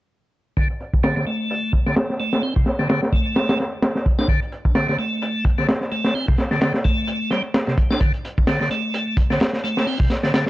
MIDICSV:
0, 0, Header, 1, 3, 480
1, 0, Start_track
1, 0, Tempo, 465116
1, 589, Time_signature, 4, 2, 24, 8
1, 10835, End_track
2, 0, Start_track
2, 0, Title_t, "Tonewheel organ"
2, 0, Program_c, 0, 16
2, 588, Note_on_c, 0, 50, 71
2, 702, Note_off_c, 0, 50, 0
2, 1068, Note_on_c, 0, 50, 90
2, 1188, Note_off_c, 0, 50, 0
2, 1201, Note_on_c, 0, 50, 66
2, 1291, Note_off_c, 0, 50, 0
2, 1308, Note_on_c, 0, 57, 69
2, 1778, Note_off_c, 0, 57, 0
2, 1925, Note_on_c, 0, 50, 68
2, 2013, Note_off_c, 0, 50, 0
2, 2268, Note_on_c, 0, 57, 67
2, 2498, Note_off_c, 0, 57, 0
2, 2509, Note_on_c, 0, 60, 74
2, 2622, Note_off_c, 0, 60, 0
2, 2643, Note_on_c, 0, 48, 68
2, 2732, Note_off_c, 0, 48, 0
2, 2883, Note_on_c, 0, 50, 65
2, 2972, Note_off_c, 0, 50, 0
2, 2988, Note_on_c, 0, 50, 76
2, 3102, Note_off_c, 0, 50, 0
2, 3228, Note_on_c, 0, 57, 67
2, 3698, Note_off_c, 0, 57, 0
2, 4322, Note_on_c, 0, 62, 69
2, 4412, Note_off_c, 0, 62, 0
2, 4428, Note_on_c, 0, 50, 73
2, 4542, Note_off_c, 0, 50, 0
2, 4904, Note_on_c, 0, 50, 93
2, 5028, Note_off_c, 0, 50, 0
2, 5041, Note_on_c, 0, 50, 70
2, 5131, Note_off_c, 0, 50, 0
2, 5146, Note_on_c, 0, 57, 71
2, 5617, Note_off_c, 0, 57, 0
2, 5761, Note_on_c, 0, 50, 70
2, 5851, Note_off_c, 0, 50, 0
2, 6107, Note_on_c, 0, 57, 70
2, 6338, Note_off_c, 0, 57, 0
2, 6348, Note_on_c, 0, 60, 77
2, 6462, Note_off_c, 0, 60, 0
2, 6483, Note_on_c, 0, 48, 68
2, 6572, Note_off_c, 0, 48, 0
2, 6721, Note_on_c, 0, 50, 69
2, 6811, Note_off_c, 0, 50, 0
2, 6824, Note_on_c, 0, 50, 74
2, 6940, Note_off_c, 0, 50, 0
2, 7064, Note_on_c, 0, 57, 69
2, 7536, Note_off_c, 0, 57, 0
2, 7545, Note_on_c, 0, 55, 69
2, 7661, Note_off_c, 0, 55, 0
2, 7919, Note_on_c, 0, 48, 69
2, 8010, Note_off_c, 0, 48, 0
2, 8160, Note_on_c, 0, 62, 67
2, 8251, Note_off_c, 0, 62, 0
2, 8267, Note_on_c, 0, 50, 73
2, 8381, Note_off_c, 0, 50, 0
2, 8746, Note_on_c, 0, 50, 92
2, 8869, Note_off_c, 0, 50, 0
2, 8882, Note_on_c, 0, 50, 65
2, 8972, Note_off_c, 0, 50, 0
2, 8990, Note_on_c, 0, 57, 69
2, 9459, Note_off_c, 0, 57, 0
2, 9602, Note_on_c, 0, 50, 68
2, 9692, Note_off_c, 0, 50, 0
2, 9948, Note_on_c, 0, 57, 69
2, 10178, Note_off_c, 0, 57, 0
2, 10189, Note_on_c, 0, 60, 72
2, 10302, Note_off_c, 0, 60, 0
2, 10325, Note_on_c, 0, 48, 70
2, 10413, Note_off_c, 0, 48, 0
2, 10565, Note_on_c, 0, 50, 65
2, 10653, Note_off_c, 0, 50, 0
2, 10671, Note_on_c, 0, 50, 76
2, 10784, Note_off_c, 0, 50, 0
2, 10835, End_track
3, 0, Start_track
3, 0, Title_t, "Drums"
3, 589, Note_on_c, 9, 36, 98
3, 590, Note_on_c, 9, 42, 73
3, 692, Note_off_c, 9, 36, 0
3, 693, Note_off_c, 9, 42, 0
3, 720, Note_on_c, 9, 42, 39
3, 823, Note_off_c, 9, 42, 0
3, 830, Note_on_c, 9, 42, 60
3, 934, Note_off_c, 9, 42, 0
3, 965, Note_on_c, 9, 36, 91
3, 1065, Note_on_c, 9, 42, 81
3, 1069, Note_off_c, 9, 36, 0
3, 1071, Note_on_c, 9, 38, 108
3, 1169, Note_off_c, 9, 42, 0
3, 1174, Note_off_c, 9, 38, 0
3, 1205, Note_on_c, 9, 38, 37
3, 1309, Note_off_c, 9, 38, 0
3, 1310, Note_on_c, 9, 42, 63
3, 1413, Note_off_c, 9, 42, 0
3, 1552, Note_on_c, 9, 42, 75
3, 1655, Note_off_c, 9, 42, 0
3, 1786, Note_on_c, 9, 36, 83
3, 1796, Note_on_c, 9, 42, 59
3, 1889, Note_off_c, 9, 36, 0
3, 1899, Note_off_c, 9, 42, 0
3, 1923, Note_on_c, 9, 38, 37
3, 2016, Note_on_c, 9, 42, 81
3, 2026, Note_off_c, 9, 38, 0
3, 2027, Note_on_c, 9, 38, 97
3, 2120, Note_off_c, 9, 42, 0
3, 2130, Note_off_c, 9, 38, 0
3, 2166, Note_on_c, 9, 38, 35
3, 2269, Note_off_c, 9, 38, 0
3, 2274, Note_on_c, 9, 42, 60
3, 2377, Note_off_c, 9, 42, 0
3, 2402, Note_on_c, 9, 38, 51
3, 2505, Note_off_c, 9, 38, 0
3, 2507, Note_on_c, 9, 46, 70
3, 2610, Note_off_c, 9, 46, 0
3, 2645, Note_on_c, 9, 36, 80
3, 2745, Note_on_c, 9, 38, 43
3, 2746, Note_on_c, 9, 42, 67
3, 2749, Note_off_c, 9, 36, 0
3, 2848, Note_off_c, 9, 38, 0
3, 2849, Note_off_c, 9, 42, 0
3, 2879, Note_on_c, 9, 38, 34
3, 2981, Note_on_c, 9, 42, 77
3, 2982, Note_off_c, 9, 38, 0
3, 2989, Note_on_c, 9, 38, 103
3, 3084, Note_off_c, 9, 42, 0
3, 3093, Note_off_c, 9, 38, 0
3, 3123, Note_on_c, 9, 38, 51
3, 3226, Note_off_c, 9, 38, 0
3, 3226, Note_on_c, 9, 36, 94
3, 3226, Note_on_c, 9, 42, 60
3, 3329, Note_off_c, 9, 36, 0
3, 3329, Note_off_c, 9, 42, 0
3, 3459, Note_on_c, 9, 42, 65
3, 3468, Note_on_c, 9, 38, 87
3, 3562, Note_off_c, 9, 42, 0
3, 3572, Note_off_c, 9, 38, 0
3, 3599, Note_on_c, 9, 42, 75
3, 3604, Note_on_c, 9, 38, 103
3, 3702, Note_off_c, 9, 42, 0
3, 3704, Note_on_c, 9, 42, 58
3, 3707, Note_off_c, 9, 38, 0
3, 3714, Note_on_c, 9, 38, 44
3, 3807, Note_off_c, 9, 42, 0
3, 3817, Note_off_c, 9, 38, 0
3, 3946, Note_on_c, 9, 38, 109
3, 3948, Note_on_c, 9, 42, 81
3, 4050, Note_off_c, 9, 38, 0
3, 4051, Note_off_c, 9, 42, 0
3, 4080, Note_on_c, 9, 38, 46
3, 4183, Note_off_c, 9, 38, 0
3, 4190, Note_on_c, 9, 36, 96
3, 4190, Note_on_c, 9, 42, 61
3, 4293, Note_off_c, 9, 36, 0
3, 4293, Note_off_c, 9, 42, 0
3, 4320, Note_on_c, 9, 38, 49
3, 4420, Note_on_c, 9, 36, 98
3, 4423, Note_off_c, 9, 38, 0
3, 4429, Note_on_c, 9, 42, 74
3, 4524, Note_off_c, 9, 36, 0
3, 4532, Note_off_c, 9, 42, 0
3, 4563, Note_on_c, 9, 42, 43
3, 4665, Note_off_c, 9, 42, 0
3, 4665, Note_on_c, 9, 42, 65
3, 4768, Note_off_c, 9, 42, 0
3, 4800, Note_on_c, 9, 36, 81
3, 4902, Note_on_c, 9, 38, 100
3, 4903, Note_off_c, 9, 36, 0
3, 4904, Note_on_c, 9, 42, 83
3, 5005, Note_off_c, 9, 38, 0
3, 5007, Note_off_c, 9, 42, 0
3, 5050, Note_on_c, 9, 38, 39
3, 5145, Note_on_c, 9, 42, 58
3, 5153, Note_off_c, 9, 38, 0
3, 5248, Note_off_c, 9, 42, 0
3, 5388, Note_on_c, 9, 42, 84
3, 5491, Note_off_c, 9, 42, 0
3, 5624, Note_on_c, 9, 36, 79
3, 5625, Note_on_c, 9, 42, 64
3, 5727, Note_off_c, 9, 36, 0
3, 5728, Note_off_c, 9, 42, 0
3, 5763, Note_on_c, 9, 38, 34
3, 5866, Note_off_c, 9, 38, 0
3, 5868, Note_on_c, 9, 38, 110
3, 5868, Note_on_c, 9, 42, 78
3, 5971, Note_off_c, 9, 38, 0
3, 5971, Note_off_c, 9, 42, 0
3, 5997, Note_on_c, 9, 38, 35
3, 6100, Note_off_c, 9, 38, 0
3, 6104, Note_on_c, 9, 42, 59
3, 6207, Note_off_c, 9, 42, 0
3, 6238, Note_on_c, 9, 38, 45
3, 6341, Note_off_c, 9, 38, 0
3, 6349, Note_on_c, 9, 46, 72
3, 6453, Note_off_c, 9, 46, 0
3, 6485, Note_on_c, 9, 36, 90
3, 6581, Note_on_c, 9, 42, 67
3, 6587, Note_on_c, 9, 38, 42
3, 6588, Note_off_c, 9, 36, 0
3, 6685, Note_off_c, 9, 42, 0
3, 6691, Note_off_c, 9, 38, 0
3, 6717, Note_on_c, 9, 38, 34
3, 6820, Note_on_c, 9, 42, 81
3, 6821, Note_off_c, 9, 38, 0
3, 6828, Note_on_c, 9, 38, 102
3, 6923, Note_off_c, 9, 42, 0
3, 6931, Note_off_c, 9, 38, 0
3, 6957, Note_on_c, 9, 38, 52
3, 7060, Note_off_c, 9, 38, 0
3, 7062, Note_on_c, 9, 42, 61
3, 7068, Note_on_c, 9, 36, 85
3, 7165, Note_off_c, 9, 42, 0
3, 7172, Note_off_c, 9, 36, 0
3, 7299, Note_on_c, 9, 42, 72
3, 7402, Note_off_c, 9, 42, 0
3, 7540, Note_on_c, 9, 38, 41
3, 7544, Note_on_c, 9, 42, 61
3, 7643, Note_off_c, 9, 38, 0
3, 7647, Note_off_c, 9, 42, 0
3, 7784, Note_on_c, 9, 38, 102
3, 7787, Note_on_c, 9, 42, 76
3, 7887, Note_off_c, 9, 38, 0
3, 7890, Note_off_c, 9, 42, 0
3, 7920, Note_on_c, 9, 38, 45
3, 8023, Note_off_c, 9, 38, 0
3, 8023, Note_on_c, 9, 42, 57
3, 8025, Note_on_c, 9, 36, 89
3, 8127, Note_off_c, 9, 42, 0
3, 8128, Note_off_c, 9, 36, 0
3, 8158, Note_on_c, 9, 38, 47
3, 8256, Note_on_c, 9, 42, 83
3, 8261, Note_off_c, 9, 38, 0
3, 8265, Note_on_c, 9, 36, 92
3, 8359, Note_off_c, 9, 42, 0
3, 8368, Note_off_c, 9, 36, 0
3, 8397, Note_on_c, 9, 42, 40
3, 8501, Note_off_c, 9, 42, 0
3, 8511, Note_on_c, 9, 42, 67
3, 8614, Note_off_c, 9, 42, 0
3, 8647, Note_on_c, 9, 36, 78
3, 8743, Note_on_c, 9, 38, 98
3, 8745, Note_on_c, 9, 42, 78
3, 8751, Note_off_c, 9, 36, 0
3, 8846, Note_off_c, 9, 38, 0
3, 8848, Note_off_c, 9, 42, 0
3, 8883, Note_on_c, 9, 38, 38
3, 8983, Note_on_c, 9, 42, 62
3, 8986, Note_off_c, 9, 38, 0
3, 9086, Note_off_c, 9, 42, 0
3, 9224, Note_on_c, 9, 42, 81
3, 9327, Note_off_c, 9, 42, 0
3, 9464, Note_on_c, 9, 36, 84
3, 9467, Note_on_c, 9, 42, 61
3, 9567, Note_off_c, 9, 36, 0
3, 9570, Note_off_c, 9, 42, 0
3, 9601, Note_on_c, 9, 38, 39
3, 9700, Note_on_c, 9, 42, 72
3, 9705, Note_off_c, 9, 38, 0
3, 9713, Note_on_c, 9, 38, 103
3, 9803, Note_off_c, 9, 42, 0
3, 9816, Note_off_c, 9, 38, 0
3, 9837, Note_on_c, 9, 38, 40
3, 9940, Note_off_c, 9, 38, 0
3, 9954, Note_on_c, 9, 42, 60
3, 10058, Note_off_c, 9, 42, 0
3, 10085, Note_on_c, 9, 38, 45
3, 10188, Note_off_c, 9, 38, 0
3, 10190, Note_on_c, 9, 46, 75
3, 10293, Note_off_c, 9, 46, 0
3, 10319, Note_on_c, 9, 36, 92
3, 10422, Note_off_c, 9, 36, 0
3, 10423, Note_on_c, 9, 38, 39
3, 10426, Note_on_c, 9, 42, 63
3, 10526, Note_off_c, 9, 38, 0
3, 10529, Note_off_c, 9, 42, 0
3, 10561, Note_on_c, 9, 38, 38
3, 10664, Note_off_c, 9, 38, 0
3, 10670, Note_on_c, 9, 38, 110
3, 10671, Note_on_c, 9, 42, 79
3, 10774, Note_off_c, 9, 38, 0
3, 10774, Note_off_c, 9, 42, 0
3, 10799, Note_on_c, 9, 38, 54
3, 10835, Note_off_c, 9, 38, 0
3, 10835, End_track
0, 0, End_of_file